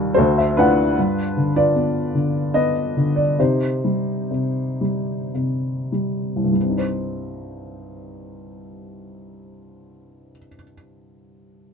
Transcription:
0.00 0.14 D#2 medium
0.00 0.14 A#2 soft
0.00 0.15 D#3 medium
0.00 0.16 G3 medium
0.00 0.54 F4 medium
0.00 0.52 D5 medium
0.14 0.95 D2 medium
0.14 0.93 F#4 medium
0.14 0.93 A4 medium
0.14 0.17 C5 medium
0.14 0.37 C5 medium
0.38 0.57 E5 medium
0.57 0.97 A2 medium
0.57 1.72 D4 medium
0.57 1.55 F4 medium
0.57 1.55 B4 medium
0.57 0.95 F#5 medium
0.99 3.37 G2 soft
1.37 2.13 D3 soft
1.56 2.72 F4 soft
1.56 2.54 B4 soft
1.56 2.59 D5 medium
1.75 2.53 B3 soft
2.15 2.95 D3 soft
2.54 3.37 B3 soft
2.54 3.36 B4 medium
2.54 3.19 D#5 medium
2.97 3.39 D3 soft
3.16 3.37 D5 medium
3.39 4.29 C3 soft
3.39 5.31 D#4 soft
3.39 5.31 G4 soft
3.39 5.31 C5 medium
3.84 4.80 G3 soft
4.31 5.33 C3 soft
4.81 5.91 G3 soft
5.34 6.52 C3 soft
5.92 6.51 G3 soft
6.36 10.30 C2 soft
6.44 10.38 G2 soft
6.53 10.47 G3 soft
6.62 10.55 C4 soft
6.69 10.63 D#4 soft
6.78 10.72 C5 soft

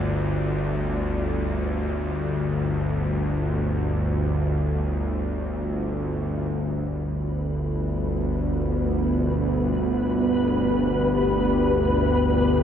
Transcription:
0.00 6.49 G1 medium
0.00 6.49 D2 medium
0.00 6.54 D5 medium
6.47 12.63 G1 medium
6.47 12.63 D2 medium
6.47 12.63 B4 medium
6.52 12.63 B3 medium
7.43 12.63 D4 medium
9.02 12.63 G4 medium
9.02 12.63 D5 medium

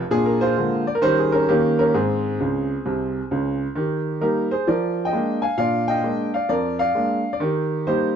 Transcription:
0.11 0.50 A#2 medium
0.11 0.37 D4 medium
0.11 0.26 G#4 loud
0.26 0.40 A#4 medium
0.41 0.84 F4 medium
0.41 0.86 C5 medium
0.57 0.82 D3 soft
0.57 0.82 G#3 soft
0.57 0.83 A#3 soft
0.87 0.95 D5 medium
0.95 1.02 A#4 medium
1.02 1.27 D#3 medium
1.02 1.28 G3 soft
1.02 1.28 C#4 soft
1.02 1.28 G4 medium
1.02 1.17 C5 loud
1.19 1.33 G#4 medium
1.32 1.47 C#4 medium
1.32 1.48 A#4 medium
1.49 1.87 D#3 medium
1.49 1.77 A#3 medium
1.49 1.74 C#4 soft
1.49 1.78 G4 medium
1.79 1.93 C#4 medium
1.79 1.94 A#4 medium
1.94 2.33 G#2 medium
1.94 3.57 C4 medium
1.94 3.60 G#4 medium
2.40 2.74 C#2 medium
2.40 2.74 C#3 medium
2.85 3.19 C2 medium
2.85 3.19 C3 medium
3.31 3.65 C#2 medium
3.31 3.65 C#3 medium
3.75 4.14 D#3 medium
3.75 4.02 G4 soft
4.21 4.46 G3 soft
4.21 4.46 A#3 soft
4.21 4.46 D#4 soft
4.21 4.50 G4 medium
4.21 4.51 A#4 medium
4.51 4.67 G#4 medium
4.51 4.67 C5 medium
4.67 5.06 F3 medium
4.67 5.03 A#4 medium
4.67 5.05 D5 medium
5.05 5.40 D#5 medium
5.05 5.42 G5 medium
5.13 5.38 G#3 soft
5.13 5.38 A#3 soft
5.13 5.38 D4 soft
5.42 5.56 F5 medium
5.42 5.58 G#5 medium
5.58 5.96 A#2 medium
5.58 5.84 D4 soft
5.58 5.86 D5 medium
5.58 5.88 F5 medium
5.88 6.31 D#5 medium
5.88 6.33 G5 medium
6.04 6.29 G#3 soft
6.04 6.29 A#3 soft
6.04 6.29 D4 soft
6.34 6.48 D5 medium
6.34 6.49 F5 medium
6.49 6.88 F2 medium
6.49 6.78 A#4 medium
6.49 6.79 D5 medium
6.79 7.30 D5 medium
6.79 7.33 F5 medium
6.95 7.20 G#3 soft
6.95 7.21 A#3 soft
6.95 7.21 D4 medium
7.33 7.41 D5 medium
7.40 7.79 D#3 medium
7.40 7.67 G4 medium
7.87 8.12 G3 soft
7.87 8.12 A#3 soft
7.87 8.12 D#4 soft
7.87 8.15 G4 medium
7.87 8.16 C5 medium

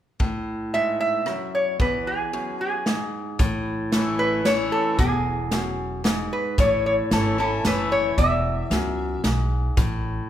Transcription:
0.20 1.21 A2 medium
0.20 kick medium
0.74 1.24 G#2 medium
0.74 0.99 E5 medium
1.01 1.50 E5 medium
1.26 1.77 F#2 medium
1.26 cross-stick medium
1.55 1.81 C#5 medium
1.80 2.33 E2 medium
1.80 2.08 B4 medium
1.80 kick loud
2.07 2.60 G#4 medium
2.33 2.84 F#2 medium
2.61 3.10 G#4 medium
2.86 3.37 G#2 medium
2.86 snare medium
3.39 4.68 A1 medium
3.39 4.40 A2 medium
3.39 kick loud
3.39 closed hi-hat medium
3.92 4.43 E3 medium
3.92 4.44 A3 medium
3.92 4.44 C#4 medium
3.92 4.44 E4 medium
3.92 snare medium
3.92 closed hi-hat medium
4.19 4.47 B4 loud
4.45 4.97 E3 medium
4.45 4.97 A3 medium
4.45 4.97 C#4 medium
4.45 4.98 E4 medium
4.45 4.73 C#5 medium
4.45 snare medium
4.45 closed hi-hat medium
4.72 4.99 A4 medium
4.98 6.27 E1 medium
4.98 5.51 E2 medium
4.98 6.01 G#4 medium
4.98 kick loud
4.98 closed hi-hat medium
5.51 6.02 F#2 medium
5.51 snare medium
5.51 closed hi-hat medium
6.04 6.55 G#2 medium
6.04 snare medium
6.04 closed hi-hat medium
6.33 6.60 B4 medium
6.58 7.01 A1 medium
6.58 7.60 A2 medium
6.58 6.85 C#5 medium
6.58 kick loud
6.58 closed hi-hat medium
6.86 6.93 C#5 medium
7.11 7.57 G#1 medium
7.11 7.37 E3 soft
7.11 7.37 A3 medium
7.11 7.37 C#4 medium
7.11 7.37 E4 medium
7.11 7.39 A4 medium
7.11 snare medium
7.11 closed hi-hat medium
7.38 7.64 C#4 soft
7.38 7.64 E4 soft
7.38 7.64 A4 medium
7.64 8.10 F#1 medium
7.64 8.15 E3 medium
7.64 8.16 A3 medium
7.64 8.16 C#4 medium
7.64 8.16 E4 medium
7.64 7.90 B4 medium
7.64 snare medium
7.64 closed hi-hat medium
7.92 8.18 C#5 medium
8.18 8.61 E1 medium
8.18 8.71 E2 medium
8.18 9.21 E5 loud
8.18 kick loud
8.18 closed hi-hat medium
8.70 9.16 C#2 medium
8.70 9.21 F#2 medium
8.70 snare medium
8.70 closed hi-hat medium
9.24 9.69 B1 medium
9.24 9.75 G#2 medium
9.24 snare medium
9.24 closed hi-hat medium
9.77 10.20 A1 medium
9.77 10.30 A2 medium
9.77 kick loud
9.77 closed hi-hat medium

